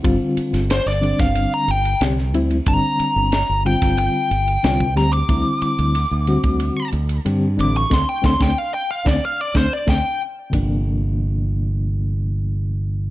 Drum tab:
RD |x-xxx-xxx-xxx-xx|x-x-x-xxx-xxx-xx|x-xxx-xxx-xxx-xx|----------------|
SD |---ooo-o----oo--|----o--o----o-o-|----------------|o-oo---o--o-o---|
BD |o------o--------|o------o-----o--|o------o--------|o-oo---o--o-o---|

RD |x---------------|
SD |----------------|
BD |o---------------|